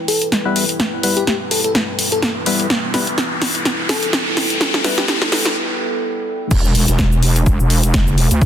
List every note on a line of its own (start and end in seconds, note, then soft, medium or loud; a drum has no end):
0.00 6.47 G3 medium
0.00 6.47 B3 medium
0.00 5.56 E4 medium
0.00 6.47 E4 medium
0.00 2.67 B4 medium
0.00 5.56 B4 medium
0.00 5.56 G5 medium
0.00 riser medium
0.08 0.27 A4 medium
0.08 open hi-hat loud
0.22 closed hi-hat medium
0.32 snare medium
0.32 closed hi-hat medium
0.45 0.65 G3 loud
0.45 0.65 B3 medium
0.45 0.65 E4 medium
0.45 0.65 B4 loud
0.56 open hi-hat loud
0.69 closed hi-hat medium
0.80 snare medium
0.80 closed hi-hat medium
1.03 1.24 G3 medium
1.03 1.24 B3 medium
1.03 1.24 E4 medium
1.03 1.24 B4 medium
1.03 open hi-hat loud
1.17 1.24 G4 medium
1.17 closed hi-hat medium
1.27 1.36 G4 medium
1.27 snare medium
1.27 closed hi-hat medium
1.51 1.60 A4 medium
1.51 open hi-hat loud
1.64 1.71 A4 medium
1.64 closed hi-hat medium
1.75 snare medium
1.75 closed hi-hat medium
1.99 open hi-hat loud
2.12 2.19 A4 medium
2.12 closed hi-hat medium
2.22 2.31 A4 medium
2.22 snare medium
2.22 closed hi-hat medium
2.46 2.67 G3 medium
2.46 2.67 B3 medium
2.46 2.67 E4 medium
2.46 2.67 B4 loud
2.46 open hi-hat loud
2.60 closed hi-hat medium
2.70 6.47 A4 loud
2.70 snare medium
2.70 closed hi-hat medium
2.94 3.08 G3 medium
2.94 3.08 B3 medium
2.94 3.08 E4 medium
2.94 3.08 B4 medium
2.94 snare medium
2.94 open hi-hat loud
3.07 closed hi-hat medium
3.18 snare medium
3.18 closed hi-hat soft
3.42 snare medium
3.42 open hi-hat loud
3.55 closed hi-hat medium
3.65 snare medium
3.65 closed hi-hat medium
3.89 4.08 A4 medium
3.89 snare medium
3.89 open hi-hat loud
4.03 closed hi-hat medium
4.13 snare medium
4.13 closed hi-hat medium
4.37 snare medium
4.37 open hi-hat loud
4.50 closed hi-hat medium
4.61 snare medium
4.61 closed hi-hat medium
4.74 snare medium
4.84 5.05 G3 medium
4.84 5.05 B3 medium
4.84 5.05 E4 medium
4.84 5.05 B4 medium
4.84 snare medium
4.84 open hi-hat loud
4.98 5.05 G4 medium
4.98 snare medium
4.98 closed hi-hat medium
5.08 5.17 G4 medium
5.08 snare loud
5.08 closed hi-hat soft
5.22 snare medium
5.32 snare loud
5.32 open hi-hat loud
5.45 snare medium
5.45 closed hi-hat medium
6.51 6.73 E1 loud
6.51 8.46 G3 medium
6.51 8.46 B3 medium
6.51 8.46 E4 medium
6.51 8.46 B4 medium
6.51 kick loud
6.51 closed hi-hat medium
6.51 crash loud
6.51 impact medium
6.51 shaker medium
6.65 shaker soft
6.75 6.86 E1 loud
6.75 open hi-hat loud
6.88 7.21 E1 medium
6.88 closed hi-hat medium
6.88 shaker medium
6.99 kick loud
6.99 snare loud
6.99 closed hi-hat medium
6.99 shaker medium
7.12 shaker soft
7.23 7.58 E1 loud
7.23 open hi-hat loud
7.36 closed hi-hat medium
7.36 shaker medium
7.46 kick loud
7.46 closed hi-hat medium
7.46 shaker medium
7.60 7.92 E1 loud
7.60 shaker soft
7.70 open hi-hat loud
7.83 closed hi-hat medium
7.83 shaker medium
7.94 8.16 F#1 medium
7.94 kick loud
7.94 snare loud
7.94 closed hi-hat medium
7.94 shaker medium
8.07 shaker soft
8.18 8.29 E1 loud
8.18 open hi-hat loud
8.31 8.40 D2 loud
8.31 closed hi-hat medium
8.31 shaker medium
8.42 kick loud
8.42 closed hi-hat medium
8.42 shaker medium